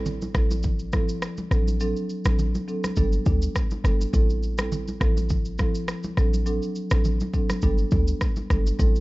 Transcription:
Already playing: A1 G3 C4 E4 A4
0.06 low conga, shaker
0.22 high conga, shaker
0.34 A1 F3 C4 E4 A4, kick, cross-stick, shaker
0.51 high conga, shaker
0.63 kick, low conga, shaker
0.79 shaker
0.92 G1 F3 C4 E4 A4, kick, cross-stick, high conga, shaker
1.09 shaker
1.22 cross-stick, shaker
1.37 high conga, shaker
1.51 A1 F#3 C4 D4 A4, cross-stick, shaker
1.67 high conga, shaker
1.80 F#3 C4 D4 A4, shaker
1.96 shaker
2.10 shaker
2.25 A1 F#3 C4 D4 A4, cross-stick, high conga, shaker
2.39 low conga, shaker
2.55 high conga, shaker
2.68 F#3 C4 D4 A4, shaker
2.84 cross-stick, high conga, shaker
2.96 G1 G3 B3 D4 A4, kick, low conga, shaker
3.13 shaker
3.26 D2 G3 B3 D4 A4, kick, high conga, shaker
3.42 shaker
3.56 kick, cross-stick, shaker
3.71 high conga, shaker
3.84 G1 G3 B3 D4 A4, cross-stick, shaker
4.01 high conga, shaker
4.13 A1 G3 C4 E4 A4, kick, shaker
4.30 shaker
4.43 shaker
4.58 G3 C4 E4 A4, cross-stick, high conga, shaker
4.72 low conga, shaker
4.88 high conga, shaker
5.00 A1 F3 C4 E4 A4, kick, cross-stick, shaker
5.17 high conga, shaker
5.29 kick, low conga, shaker
5.45 shaker
5.58 G1 F3 C4 E4 A4, kick, cross-stick, high conga, shaker
5.75 shaker
5.88 cross-stick, shaker
6.03 high conga, shaker
6.17 A1 F#3 C4 D4 A4, cross-stick, shaker
6.34 high conga, shaker
6.46 F#3 C4 D4 A4, shaker
6.62 shaker
6.75 shaker
6.91 A1 F#3 C4 D4 A4, cross-stick, high conga, shaker
7.05 low conga, shaker
7.20 high conga, shaker
7.33 F#3 C4 D4 A4, kick, shaker
7.50 cross-stick, high conga, shaker
7.62 G1 G3 B3 D4 A4, kick, low conga, shaker
7.78 shaker
7.91 D2 G3 B3 D4 A4, kick, high conga, shaker
8.07 shaker
8.21 kick, cross-stick, shaker
8.36 high conga, shaker
8.50 G1 G3 B3 D4 A4, kick, cross-stick, shaker
8.67 high conga, shaker
8.79 A1 G3 C4 E4 A4, kick, shaker
8.96 shaker

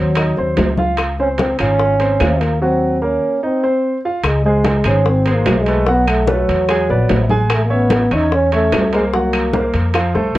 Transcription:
Already playing: D#2 F#3
0.15 D#4 D#5, high bongo, high conga, high timbale, claves
0.37 D#2 C4 C5, high bongo, high conga
0.57 C#2, high bongo, low bongo, high conga, high timbale, low timbale
0.78 F4 F5, high bongo, high conga
0.97 high bongo, high conga, high timbale, claves
1.19 C4 C#4 C5, high conga
1.38 C4, high bongo, high conga, high timbale, low timbale
1.59 G#1 C#4 F4 F5, high bongo, high timbale, claves
1.79 high bongo, high conga
2.00 C4 C5, high bongo, high conga, high timbale
2.20 D#2 F4 F5, high bongo, low bongo, high conga, high timbale, low timbale, claves
2.41 A#3, high bongo, high conga, high timbale
2.62 F#3 C4 F#4
3.02 A#3 C#4 A#4
3.43 C4 D#4 D#5
3.63 C4 C5
4.05 F4 F5
4.24 C#2 G#3, high bongo, high conga, high timbale, claves
4.45 G#3 G#4 C5, high conga
4.65 high bongo, high conga, high timbale, low timbale
4.84 G#1 G#3 C#4 G#4 C5, high bongo, high timbale, claves
5.06 C4, high bongo, high conga
5.26 G#3 G#4 C5, high bongo, high conga, high timbale
5.34 A#3
5.46 B1, high bongo, low bongo, high conga, high timbale, low timbale, claves
5.60 G#3
5.66 A3 A4 B4, high bongo, high conga, high timbale
5.87 F#3 B3 F#4 F#5, high bongo, high conga
6.08 A3, high conga, high timbale, claves
6.28 F#3 A3 A4 B4, high bongo, high conga, low timbale
6.48 E2, high bongo, high conga, high timbale
6.69 G#3 G#4 G#5, high bongo, high conga, high timbale, claves
6.89 A#1 B3 B4 D5, high bongo, high conga
7.09 A1, high bongo, low bongo, high conga, high timbale, low timbale
7.29 G#3 G#4 G#5, high bongo, high conga
7.50 A3, high bongo, high conga, high timbale, claves
7.65 A#3
7.70 B3 C#4 C#5 E5, high conga
7.90 high bongo, high conga, high timbale, low timbale
8.11 E2 C#4 D#4 C#5 E5, high bongo, high timbale, claves
8.31 C#4, high bongo, high conga
8.52 A3 C#4 C#5 E5, high bongo, high conga, high timbale
8.72 C2, high bongo, low bongo, high conga, high timbale, low timbale, claves
8.93 G#3 A#3 A#4 C5, high bongo, high conga, high timbale
9.13 F#3 A#3 F#4 F#5, high bongo, high conga
9.33 high conga, high timbale, claves
9.53 A#3 A#4 C5, high bongo, high conga, low timbale
9.74 F2, high bongo, high conga, high timbale
9.94 F3 F4 F5, high bongo, high conga, high timbale, claves
10.14 C2 A3 A4 C5, high bongo, high conga
10.35 A#1

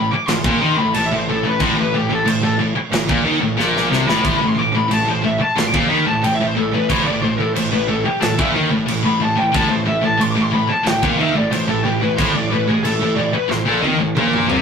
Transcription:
Already playing: A1 A2 B5
0.11 D6, muted picked electric bass stroke, muted distorted electric guitar stroke
0.27 A1 A2 C6, snare, crash
0.44 A#1 A#2, kick
0.62 D#2 D#3
0.77 A1 A2 B5
0.94 A1 A2 A5, crash
1.06 E5
1.12 A1 A2
1.16 C5
1.28 A1 A2 A4
1.44 A1 A2 B4
1.60 A1 A2 C5, kick, crash
1.77 A1 A2 B4
1.94 A1 A2 G4
2.10 A1 A2 A4
2.26 A1 A2 C5, crash
2.42 A1 A2 A4
2.59 A1 A2
2.75 muted picked electric bass stroke, muted distorted electric guitar stroke
2.91 A1 A2, snare, crash
3.09 A#1 A#2, kick
3.24 D#2 D#3
3.41 A1 A2
3.57 A#1 A#2, snare
3.77 snare
3.90 C2 C3, snare
4.08 A1 A2 B5, snare
4.24 A1 A2 C6, kick, crash
4.37 B5
4.41 A1 A2
4.47 C6
4.55 A1 A2 D6
4.59 A2
4.72 A1 A2 B5
4.88 A1 A2 A5, crash
5.05 A1 A2
5.10 C5
5.23 A1 A2 E5
5.40 A5, muted distorted electric guitar stroke, muted picked electric bass stroke
5.57 A1 A2 C6, snare, crash
5.67 D6
5.74 A#1 A#2 C6, kick
5.89 D#2 D#3 B5
6.06 A1 A2 A5
6.24 A1 A2 G5, crash
6.34 E5
6.40 A1 A2
6.47 C5
6.57 A1 A2 A4
6.73 A1 A2 B4
6.89 A1 A2 C5, kick, crash
7.06 A1 A2 D5
7.22 A1 A2 C5
7.39 A1 A2 A4
7.53 A1 A2 C5, crash
7.71 A1 A2 B4
7.88 A1 A2 A4
8.04 G4, muted picked electric bass stroke, muted distorted electric guitar stroke
8.20 A1 A2 A4, snare, crash
8.38 A#1 A#2 E4, kick
8.54 D#2 D#3
8.71 A1 A2
8.86 A1 A2, crash
9.03 A1 A2 B5
9.20 A1 A2 A5
9.36 A1 A2 G5
9.52 A1 A2 A5, kick, crash
9.69 A1 A2 C5
9.86 A1 A2 E5
10.02 A1 A2 A5
10.18 A1 A2 C6, crash
10.31 D6
10.35 A1 A2
10.43 C6
10.51 A1 A2 B5
10.68 A5, muted distorted electric guitar stroke
10.72 muted picked electric bass stroke
10.84 A2 G5, snare, crash
10.88 A1
11.02 A#1 A#2 F5, kick
11.18 D#2 D#3 E5
11.35 A1 A2 D5
11.51 A1 A2 C5, crash
11.67 A1 A2 A4
11.83 A1 A2 G4
12.00 A1 A2 B4
12.16 A1 A2 C5, kick, crash
12.34 A1 A2 D5
12.51 A1 A2 B4
12.67 A1 A2 G#4
12.83 A1 A2 A4, crash
13.02 A1 A2
13.15 A1 A2 D5
13.33 B4, muted distorted electric guitar stroke, muted picked electric bass stroke
13.48 A1 A2 C5, snare
13.65 A#1 A#2 A4
13.82 D#2 D#3, high tom
13.99 A1 A2
14.16 A#1 A#2, mid tom
14.33 mid tom
14.48 C2 C3, floor tom

